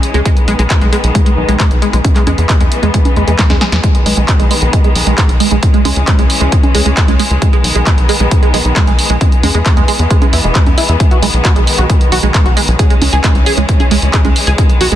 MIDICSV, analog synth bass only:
0, 0, Header, 1, 2, 480
1, 0, Start_track
1, 0, Key_signature, 5, "major"
1, 0, Tempo, 447761
1, 273, Time_signature, 4, 2, 24, 8
1, 16031, End_track
2, 0, Start_track
2, 0, Title_t, "Analog synth bass"
2, 0, Program_c, 0, 38
2, 153, Note_on_c, 0, 37, 76
2, 236, Note_off_c, 0, 37, 0
2, 513, Note_on_c, 0, 35, 86
2, 596, Note_off_c, 0, 35, 0
2, 633, Note_on_c, 0, 35, 80
2, 716, Note_off_c, 0, 35, 0
2, 874, Note_on_c, 0, 35, 73
2, 957, Note_off_c, 0, 35, 0
2, 1113, Note_on_c, 0, 35, 79
2, 1196, Note_off_c, 0, 35, 0
2, 1474, Note_on_c, 0, 35, 88
2, 1556, Note_off_c, 0, 35, 0
2, 1593, Note_on_c, 0, 35, 76
2, 1676, Note_off_c, 0, 35, 0
2, 1833, Note_on_c, 0, 35, 77
2, 1916, Note_off_c, 0, 35, 0
2, 2072, Note_on_c, 0, 35, 78
2, 2156, Note_off_c, 0, 35, 0
2, 2433, Note_on_c, 0, 40, 86
2, 2516, Note_off_c, 0, 40, 0
2, 2553, Note_on_c, 0, 40, 77
2, 2636, Note_off_c, 0, 40, 0
2, 2793, Note_on_c, 0, 40, 74
2, 2876, Note_off_c, 0, 40, 0
2, 3033, Note_on_c, 0, 40, 78
2, 3116, Note_off_c, 0, 40, 0
2, 3393, Note_on_c, 0, 40, 91
2, 3476, Note_off_c, 0, 40, 0
2, 3513, Note_on_c, 0, 40, 78
2, 3596, Note_off_c, 0, 40, 0
2, 3752, Note_on_c, 0, 40, 74
2, 3836, Note_off_c, 0, 40, 0
2, 3992, Note_on_c, 0, 40, 78
2, 4076, Note_off_c, 0, 40, 0
2, 4352, Note_on_c, 0, 35, 87
2, 4436, Note_off_c, 0, 35, 0
2, 4473, Note_on_c, 0, 35, 82
2, 4556, Note_off_c, 0, 35, 0
2, 4713, Note_on_c, 0, 35, 73
2, 4796, Note_off_c, 0, 35, 0
2, 4953, Note_on_c, 0, 35, 79
2, 5036, Note_off_c, 0, 35, 0
2, 5313, Note_on_c, 0, 35, 93
2, 5396, Note_off_c, 0, 35, 0
2, 5433, Note_on_c, 0, 35, 79
2, 5516, Note_off_c, 0, 35, 0
2, 5673, Note_on_c, 0, 35, 77
2, 5756, Note_off_c, 0, 35, 0
2, 5913, Note_on_c, 0, 35, 81
2, 5996, Note_off_c, 0, 35, 0
2, 6273, Note_on_c, 0, 37, 87
2, 6356, Note_off_c, 0, 37, 0
2, 6394, Note_on_c, 0, 37, 81
2, 6477, Note_off_c, 0, 37, 0
2, 6633, Note_on_c, 0, 37, 76
2, 6716, Note_off_c, 0, 37, 0
2, 6873, Note_on_c, 0, 37, 78
2, 6956, Note_off_c, 0, 37, 0
2, 7232, Note_on_c, 0, 37, 92
2, 7316, Note_off_c, 0, 37, 0
2, 7353, Note_on_c, 0, 37, 78
2, 7436, Note_off_c, 0, 37, 0
2, 7594, Note_on_c, 0, 37, 74
2, 7676, Note_off_c, 0, 37, 0
2, 7833, Note_on_c, 0, 37, 80
2, 7916, Note_off_c, 0, 37, 0
2, 8193, Note_on_c, 0, 35, 88
2, 8276, Note_off_c, 0, 35, 0
2, 8313, Note_on_c, 0, 35, 83
2, 8396, Note_off_c, 0, 35, 0
2, 8553, Note_on_c, 0, 35, 72
2, 8636, Note_off_c, 0, 35, 0
2, 8792, Note_on_c, 0, 35, 80
2, 8876, Note_off_c, 0, 35, 0
2, 9153, Note_on_c, 0, 35, 91
2, 9236, Note_off_c, 0, 35, 0
2, 9273, Note_on_c, 0, 35, 76
2, 9356, Note_off_c, 0, 35, 0
2, 9513, Note_on_c, 0, 35, 74
2, 9596, Note_off_c, 0, 35, 0
2, 9753, Note_on_c, 0, 35, 78
2, 9836, Note_off_c, 0, 35, 0
2, 10114, Note_on_c, 0, 40, 87
2, 10197, Note_off_c, 0, 40, 0
2, 10233, Note_on_c, 0, 40, 78
2, 10316, Note_off_c, 0, 40, 0
2, 10473, Note_on_c, 0, 40, 72
2, 10556, Note_off_c, 0, 40, 0
2, 10713, Note_on_c, 0, 40, 80
2, 10796, Note_off_c, 0, 40, 0
2, 11073, Note_on_c, 0, 40, 90
2, 11156, Note_off_c, 0, 40, 0
2, 11193, Note_on_c, 0, 28, 82
2, 11276, Note_off_c, 0, 28, 0
2, 11434, Note_on_c, 0, 40, 74
2, 11517, Note_off_c, 0, 40, 0
2, 11673, Note_on_c, 0, 40, 79
2, 11756, Note_off_c, 0, 40, 0
2, 12033, Note_on_c, 0, 35, 91
2, 12116, Note_off_c, 0, 35, 0
2, 12153, Note_on_c, 0, 35, 81
2, 12236, Note_off_c, 0, 35, 0
2, 12393, Note_on_c, 0, 35, 75
2, 12476, Note_off_c, 0, 35, 0
2, 12633, Note_on_c, 0, 35, 78
2, 12716, Note_off_c, 0, 35, 0
2, 12993, Note_on_c, 0, 35, 92
2, 13076, Note_off_c, 0, 35, 0
2, 13113, Note_on_c, 0, 35, 80
2, 13196, Note_off_c, 0, 35, 0
2, 13353, Note_on_c, 0, 35, 75
2, 13436, Note_off_c, 0, 35, 0
2, 13593, Note_on_c, 0, 35, 83
2, 13676, Note_off_c, 0, 35, 0
2, 13954, Note_on_c, 0, 37, 84
2, 14037, Note_off_c, 0, 37, 0
2, 14073, Note_on_c, 0, 37, 80
2, 14156, Note_off_c, 0, 37, 0
2, 14313, Note_on_c, 0, 37, 74
2, 14396, Note_off_c, 0, 37, 0
2, 14554, Note_on_c, 0, 37, 81
2, 14637, Note_off_c, 0, 37, 0
2, 14913, Note_on_c, 0, 37, 93
2, 14996, Note_off_c, 0, 37, 0
2, 15034, Note_on_c, 0, 37, 82
2, 15116, Note_off_c, 0, 37, 0
2, 15274, Note_on_c, 0, 37, 77
2, 15357, Note_off_c, 0, 37, 0
2, 15514, Note_on_c, 0, 37, 80
2, 15597, Note_off_c, 0, 37, 0
2, 15874, Note_on_c, 0, 35, 89
2, 15957, Note_off_c, 0, 35, 0
2, 15993, Note_on_c, 0, 35, 79
2, 16031, Note_off_c, 0, 35, 0
2, 16031, End_track
0, 0, End_of_file